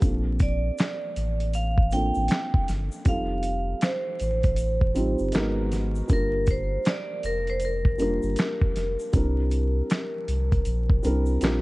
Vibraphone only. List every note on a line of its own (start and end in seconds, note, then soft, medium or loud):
0.42 1.51 D5 medium
1.55 1.90 F5 medium
1.93 2.65 G5 loud
3.08 3.85 F5 loud
3.84 5.31 C5 medium
6.13 6.51 A#4 medium
6.51 6.88 C5 medium
6.88 7.22 D5 loud
7.26 7.49 A#4 medium
7.50 7.63 C5 medium
7.65 11.39 A#4 medium